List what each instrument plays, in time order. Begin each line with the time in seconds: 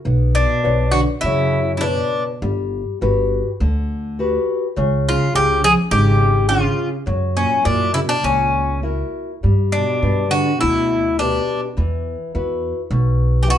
0.05 upright bass B1, nylon-string guitar B3
0.34 cello B2, bouzouki D4
0.63 upright bass B1, nylon-string guitar B4 C#5 D5
0.91 cello D3, bouzouki F#4
1.21 upright bass F#2, cello C#3, nylon-string guitar F#3, bouzouki E4
1.77 cello B2 C#3, bouzouki D4 E4
1.82 nylon-string guitar B4 C#5 D5
2.42 upright bass G1, nylon-string guitar G3
3.01 upright bass G1, nylon-string guitar F#4 G4 B4
3.60 upright bass D2, nylon-string guitar D3
4.19 nylon-string guitar F#4 G4 B4
4.76 upright bass C#2, nylon-string guitar C#3
5.09 cello C#3, bouzouki F4
5.33 upright bass C#2, cello C#3, nylon-string guitar C#4 F4 G#4, bouzouki G4
5.61 cello F3, bouzouki G#4
5.91 upright bass G#1, cello C#3, nylon-string guitar G#3, bouzouki G4
6.48 cello C#3, nylon-string guitar C#4 F4 G#4, bouzouki F4
7.06 upright bass F#2, nylon-string guitar F#3
7.36 cello A#2, bouzouki C#4
7.63 upright bass F#2, cello A#2, bouzouki D4, nylon-string guitar E4 F#4 A#4
7.93 cello C#3, bouzouki E4
8.07 cello B2, bouzouki D4
8.23 upright bass C#2, cello A#2, nylon-string guitar C#3, bouzouki C#4
8.82 nylon-string guitar E4 F#4 A#4
9.43 upright bass G2, nylon-string guitar G3
9.72 cello B2, bouzouki D4
10.02 upright bass G2, nylon-string guitar D4 G4 B4
10.29 cello D3, bouzouki F#4
10.59 upright bass D2, cello B2, nylon-string guitar D3, bouzouki E4
11.19 cello B2, bouzouki D4, nylon-string guitar D4 G4 B4
11.77 upright bass E2, nylon-string guitar E3
12.35 upright bass E2, nylon-string guitar E4 F#4 B4
12.91 upright bass B1, nylon-string guitar B2
13.42 cello E3, bouzouki G4
13.48 cello B2, nylon-string guitar E4 F#4 B4, bouzouki F#4